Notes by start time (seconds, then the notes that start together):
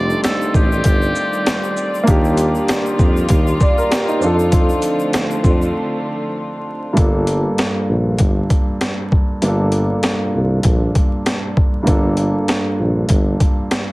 Already playing: F1 D#3 G3 A3 C4 D4 D#4 F4 G4 D5
0.10 shaker
0.23 A4, snare, closed hi-hat, shaker
0.41 shaker
0.54 A1 G4, kick, shaker
0.72 shaker
0.84 G1, kick, closed hi-hat, shaker
1.02 shaker
1.16 shaker
1.33 shaker
1.46 snare, closed hi-hat, shaker
1.64 shaker
1.77 shaker
1.95 shaker
2.03 A#3 D4, closed hi-hat
2.08 D#2 D#3 A#3 F4 G4, kick, shaker
2.25 shaker
2.37 closed hi-hat, shaker
2.55 shaker
2.68 snare, closed hi-hat, shaker
2.86 shaker
2.99 F2, kick, shaker
3.17 shaker
3.29 D#2, kick, closed hi-hat, shaker
3.47 shaker
3.60 D5, kick, shaker
3.78 A#4, shaker
3.91 G4, snare, closed hi-hat, shaker
4.08 D#4, shaker
4.20 F2 D3 F3 A3 C4 D4, shaker
4.24 F4 A4
4.39 shaker
4.52 kick, closed hi-hat, shaker
4.70 shaker
4.82 closed hi-hat, shaker
5.00 shaker
5.13 snare, closed hi-hat, shaker
5.31 shaker
5.44 F2, kick, shaker
5.62 shaker
6.93 G2 A#3 D4, closed hi-hat
6.97 G1 F4 A4, kick
7.27 closed hi-hat
7.58 snare, closed hi-hat
7.89 A#1
8.19 G1, kick, closed hi-hat
8.50 kick, closed hi-hat
8.81 snare, closed hi-hat
9.12 kick
9.41 G1 G2 A#3 D4, closed hi-hat
9.46 F4 A4
9.72 closed hi-hat
10.03 snare, closed hi-hat
10.34 C2
10.63 A#1, kick, closed hi-hat
10.95 kick, closed hi-hat
11.26 snare, closed hi-hat
11.57 kick
11.83 G2 A#3 D4
11.87 G1 F4 A4, kick, closed hi-hat
12.17 closed hi-hat
12.48 snare, closed hi-hat
12.79 A#1
13.09 G1, kick, closed hi-hat
13.40 kick, closed hi-hat
13.71 snare, closed hi-hat